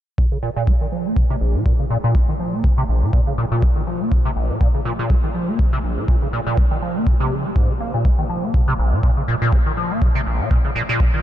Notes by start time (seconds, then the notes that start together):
0.18 A#2, kick
0.32 C#3
0.43 A#2
0.56 A#2
0.67 A#3, kick
0.81 D#3
0.92 F3
1.06 A#3
1.17 A#2, kick
1.30 C3
1.41 A#1
1.55 A#2
1.66 A#2, kick
1.79 C#3
1.90 A#2
2.04 A#2
2.15 A#3, kick
2.29 D#3
2.39 F3
2.53 A#3
2.64 A#2, kick
2.78 C3
2.89 A#1
3.02 A#2
3.13 A#2, kick
3.27 C#3
3.38 A#2
3.52 A#2
3.62 A#3, kick
3.76 D#3
3.87 F3
4.01 A#3
4.11 A#2, kick
4.25 C3
4.36 A#1
4.50 A#2
4.61 A#2, kick
4.75 C#3
4.85 A#2
4.99 A#2
5.10 A#3, kick
5.24 D#3
5.35 F3
5.48 A#3
5.59 A#2, kick
5.73 C3
5.84 A#1
5.97 A#2
6.08 A#2, kick
6.22 C#3
6.33 A#2
6.47 A#2
6.57 A#3, kick
6.71 D#3
6.82 F3
6.96 A#3
7.07 A#2, kick
7.20 C3
7.31 C#3
7.45 A#3
7.56 G#2, kick
7.69 D#3
7.80 A#3
7.94 A#2
8.05 A#3, kick
8.19 D#3
8.30 F3
8.43 A#3
8.54 A#2, kick
8.68 C3
8.79 A#1
8.92 A#2
9.03 A#2, kick
9.17 C#3
9.28 A#2
9.42 A#2
9.53 A#3, kick
9.66 D#3
9.77 F3
9.91 A#3
10.02 A#2, kick
10.15 C3
10.26 A#1
10.40 A#2
10.51 A#2, kick
10.64 C#3
10.75 A#2
10.89 A#2
11.00 A#3, kick
11.14 D#3